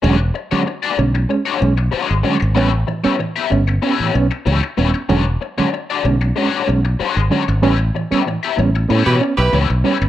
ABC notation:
X:1
M:4/4
L:1/16
Q:1/4=95
K:Emix
V:1 name="Horn section"
z16 | z16 | z16 | z8 z [E=GB] z [EGB]2 z3 |]
V:2 name="Overdriven electric guitar"
[G,DFc] z2 [G,DFc] z [G,DFd] z3 [G,DFc] z2 [G,DFc] z [G,DFc] z | [B,E=Gc] z2 [B,EGc] z [B,EGe] z2 [B,EGc]2 z2 [B,EGc] z [B,EGc] z | [G,DFc] z2 [G,DFc] z [G,DFd] z2 [G,DFc]2 z2 [G,DFc] z [G,DFc] z | [B,E=Gc] z2 [B,EGc] z [B,EGe] z2 [B,EGc]2 z2 [B,EGc] z [B,EGc] z |]
V:3 name="Reed electric piano" clef=bass
[D,F,G,C] z2 [D,F,G,C] z2 [D,F,G,C] [G,C] [G,C] z [G,C] z3 [D,F,G,C] [G,C] | [=G,B,C] z [A,,E,] [G,B,C] [A,,E,] z [G,B,C] [B,C] [B,C] [A,,E,] [B,C] z [A,,E,] z [G,B,C] [B,C] | [D,F,G,C] z2 [D,F,G,C] z2 [D,F,G,C] [G,C] [G,C] z [G,C] z3 [D,F,G,C] [G,C] | [=G,B,C] z [A,,E,] [G,B,C] [A,,E,] z [G,B,C] [B,C] [B,C] [A,,E,] [B,C] z [A,,E,] z [G,B,C] [B,C] |]
V:4 name="Fingered electric bass" clef=bass
E,,,2 z4 B,,,2 z2 B,,,2 z G,,, z G,,, | A,,,2 z4 =G,,,2 z2 B,,, z C,, z ^D,,, z | E,,,2 z4 B,,,2 z2 B,,,2 z G,,, z G,,, | A,,,2 z4 A,,,2 A,, B,, z B,,, C,, B,,, z =G,,, |]